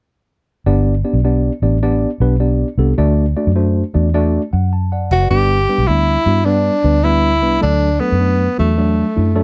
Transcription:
0.66 G1 B3 D4 G4 D5
1.05 B3 D4 G4 D5
1.13 B1
1.24 B3 D4 G4 D5
1.62 A1 B3 D4 G4 D5
1.83 B3 D4 G4 D5
2.20 B1 B3 D4 G4 B4
2.40 B3 D4 G4 D5
2.78 C2 B3 D4 G4 A4
2.98 D2 A3 D4 F#4 D5
3.37 A3 D4 F#4 D5
3.47 F#2
3.56 A3 D4 F#4 C5
3.94 E2 A3 D4 F#4 D5
4.14 A3 D4 F#4 D5
4.53 F#2 F#5
4.73 A5
4.92 D5 F#5
5.11 F#1 F#4 C5 E5
5.22 B4 D5
5.30 G1 G3 B3 D4 G4 B4
5.69 G3 B3 D4 B4
5.78 B1
5.88 D2 G3 B3 D4 E4
6.26 G2 G3 B3 D4 F#4
6.45 G3 B3 D4 B4
6.84 D2 G3 B3 D4 B4
7.04 G3 B3 D4 E4 B4
7.42 C2 G3 B3 D4 B4
7.61 D2 F#3 A3 D4 A4
8.00 F#3 A3 B3 D4 A4
8.12 F#2
8.20 F#3 A3 D4 B4
8.58 E2 F#3 A3 D4 F#4
8.78 F#3 A3 D4 A4
9.16 F#2 F#3 A3 D4 E4
9.36 F#3 A3 D4 A4

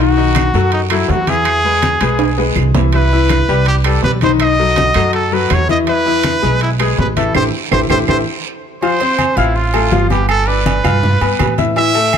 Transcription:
Already playing: B1
0.00 D#3 D#4 F#4 D#5
0.17 D#3 D#4 D#5, high conga
0.35 high conga, high timbale, short guiro, claves
0.54 F#2 F#3 F#4 A4, short guiro
0.72 D#4, high conga, high timbale, long guiro
0.90 F#3 E4 F#4 A4, high conga, high timbale, claves
1.08 E2 F#4, high conga, low timbale, short guiro
1.27 E3 E4 G#4 E5, high conga, high timbale, short guiro
1.45 high conga, high timbale, long guiro, claves
1.65 G#3 G#4 B4, high conga
1.82 high conga, high timbale, short guiro
2.01 B1 G#3 G#4 B4, high timbale, short guiro, claves
2.19 high conga, high timbale, long guiro
2.38 G#3 G#4 B4, high conga, high timbale
2.56 C2, high conga, short guiro, claves
2.75 E3 E4 E5, high conga, low timbale, short guiro
2.92 E3 E4 B4 E5, high conga, high timbale, long guiro
3.12 E3 E4 E5, high conga
3.29 high conga, high timbale, short guiro, claves
3.48 C2 G3 G4 B4, short guiro
3.66 G4, high conga, high timbale, long guiro
3.84 G3 G4 A4 B4, high conga, high timbale, claves
4.03 B1 B4, high conga, low timbale, short guiro
4.21 D#3 D#4 C5 D#5, high conga, high timbale, short guiro
4.40 D#5, high conga, high timbale, long guiro, claves
4.59 F#3 F#4 A4, high conga
4.76 high conga, high timbale, short guiro
4.94 F#2 F#3 F#4 A4, high timbale, short guiro, claves
5.13 A4, high conga, high timbale, long guiro
5.32 F#3 F#4 A4 B4, high conga
5.50 E2 C#5, high conga, high timbale, low timbale, short guiro, claves
5.69 E3 E4 D#5 E5, high conga, short guiro
5.87 E3 E4 B4 E5, high conga, high timbale, long guiro
6.06 E3 E4 E5, high conga
6.24 high conga, high timbale, short guiro, claves
6.42 B1 G#3 G#4 B4, short guiro
6.61 E4, high conga, high timbale, long guiro
6.79 G#3 G#4 B4, high conga, high timbale, claves
6.98 A1 B4, high conga, low timbale, short guiro
7.17 E3 E4 A4 E5, high conga, high timbale, short guiro
7.35 A1 E4 G4 A4 C5, high conga, high timbale, long guiro, claves
7.72 A1 E4 G4 A4 C5, high conga, high timbale, claves
7.90 A1 E4 G4 A4 C5, high conga, high timbale, long guiro, claves
8.08 A1 E4 G4 A4 C5, high conga, high timbale, long guiro, claves
8.82 F3 F4 C5 F5, high conga, low agogo, long guiro
9.00 C4 C5 C6, high conga, low agogo
9.19 high conga, low agogo, short guiro, claves
9.37 A1 E4 F4 F5 F6, high conga, low agogo, short guiro
9.56 F4, high conga, long guiro
9.74 A3 A4 A5, high conga, low agogo, claves
9.92 G1 F3 F4 F5, high conga, low timbale, short guiro
10.10 B3 G4 B4 B5, high conga, low agogo, short guiro
10.29 A4, high conga, low agogo, long guiro, claves
10.47 D4 B4 D5 D6, high conga
10.66 high conga, low agogo, short guiro
10.84 G2 F4 F5 F6, high conga, low conga, low agogo, short guiro, claves
11.03 high conga, low conga, long guiro
11.21 G2 B3 B4 B5, high conga, low agogo
11.39 A2, high conga, low timbale, low agogo, short guiro, claves
11.58 E4 E5 E6, high conga, short guiro
11.76 E3 E4 E5, high conga, low agogo, long guiro
11.95 A3 A4 A5, high conga, low agogo
12.13 high conga, low agogo, short guiro, claves

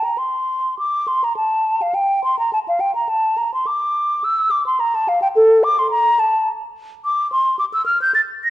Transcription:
0.04 A#5
0.18 C6
0.79 D6
1.08 C6
1.24 A#5
1.37 A5
1.82 F5
1.95 G5
2.24 C6
2.39 A#5
2.53 A5
2.68 F5
2.80 G5
2.95 A#5
3.09 A5
3.37 A#5
3.53 C6
3.66 D6
4.24 E6
4.51 D6
4.66 C6
4.80 A#5
4.95 A5
5.08 F5
5.22 G5
5.36 A4
5.64 D6
5.79 C6
5.91 A#5
6.20 A5
7.05 D6
7.32 C6
7.59 D6
7.73 E6
7.86 F6
8.02 G6
8.14 A6
8.44 A#6

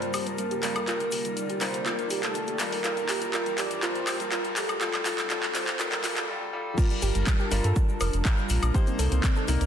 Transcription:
Already playing: G2 G3 A#3 F4 A#4 C5 A5, riser
0.02 G3, closed hi-hat, shaker
0.14 G4, open hi-hat, high woodblock, shaker
0.26 G3 A#4, closed hi-hat, shaker
0.38 G3, closed hi-hat, shaker
0.51 G4, closed hi-hat, shaker
0.63 G3 F4 A#4, clap, open hi-hat, shaker
0.76 A4, closed hi-hat, high woodblock, shaker
0.87 C3 G3 D#4 F4 A#4 D5, clap, closed hi-hat, shaker
1.00 G3, closed hi-hat, shaker
1.11 G4, open hi-hat, shaker
1.25 G3, closed hi-hat, shaker
1.37 G3, closed hi-hat, shaker
1.50 G4, closed hi-hat, shaker
1.61 G3 F4 A#4 C5, clap, open hi-hat, shaker
1.74 A4, closed hi-hat, shaker
1.86 G3 A#3 F4 A#4, clap, closed hi-hat, shaker
1.99 G3, closed hi-hat, shaker
2.10 G4, open hi-hat, shaker
2.23 G3 A4, clap, closed hi-hat, shaker
2.34 G3, closed hi-hat, shaker
2.47 G4, closed hi-hat, shaker
2.59 G3 F4 A#4, clap, open hi-hat, shaker
2.72 A4, open hi-hat, shaker
2.84 G2 G3 F4 A#4 A5, clap, closed hi-hat, shaker
2.97 G3, closed hi-hat, shaker
3.08 G4, clap, open hi-hat, shaker
3.22 G3, closed hi-hat, shaker
3.33 G3 F4 A#4, clap, closed hi-hat, shaker
3.46 G3, closed hi-hat, shaker
3.58 G4 D5, clap, open hi-hat, shaker
3.71 G3, closed hi-hat, shaker
3.82 G3 F4 A#4 C5, clap, closed hi-hat, shaker
3.95 G3, closed hi-hat, shaker
4.07 G4, clap, open hi-hat, high woodblock, shaker
4.20 G3 A#4, closed hi-hat, shaker
4.32 G3 F4 A#4, clap, closed hi-hat, shaker
4.44 G3, closed hi-hat, shaker
4.56 G4 A4, clap, open hi-hat, shaker
4.69 G3, closed hi-hat, high woodblock, shaker
4.81 A2 G3 C4 D#4 F4 A4, clap, closed hi-hat, shaker
4.93 G3, clap, closed hi-hat, high woodblock, shaker
5.05 G3 F4 A4, clap, open hi-hat, shaker
5.18 G3, clap, closed hi-hat, shaker
5.30 G3 F4 A4, clap, closed hi-hat, shaker
5.43 G3, clap, closed hi-hat, shaker
5.55 G3 F4 A4 C5, clap, open hi-hat, shaker
5.67 G3, clap, closed hi-hat, shaker
5.79 G3 F4 A4 A#4, clap, closed hi-hat, shaker
5.92 G3, clap, closed hi-hat, shaker
6.04 G3 F4 A4, clap, open hi-hat, shaker
6.17 G3 A4, clap, closed hi-hat, shaker
6.28 G3 F4 A4
6.53 G3 F4 A4
6.78 G3 D4 F4 A#4 A5, kick, closed hi-hat, crash, shaker
6.90 G3, closed hi-hat, shaker
7.02 G1 G4, open hi-hat, shaker
7.15 G1 G3, closed hi-hat, shaker
7.27 G3, kick, clap, closed hi-hat, shaker
7.39 G4, shaker
7.51 G1 G3 F4 A#4, open hi-hat, shaker
7.64 G2 A4, closed hi-hat, shaker
7.76 G3, kick, closed hi-hat, shaker
7.89 G3, shaker
8.01 F1 A#4, open hi-hat, high woodblock, shaker
8.13 F1, closed hi-hat, shaker
8.25 G3 F4 A#4, kick, clap, closed hi-hat, shaker
8.38 shaker
8.49 A#1, open hi-hat, shaker
8.63 A#1, closed hi-hat, high woodblock, shaker
8.74 C3 A#3 D#4 G4 C5 D5, kick, closed hi-hat, shaker
8.87 C4, closed hi-hat, shaker
8.99 C2 A4, open hi-hat, shaker
9.12 C2 C4, closed hi-hat, shaker
9.23 C4, kick, clap, closed hi-hat, shaker
9.36 A4, shaker
9.48 C2 A#3 C4 D#4 A#4, open hi-hat, shaker
9.61 C2 A#4, closed hi-hat, shaker

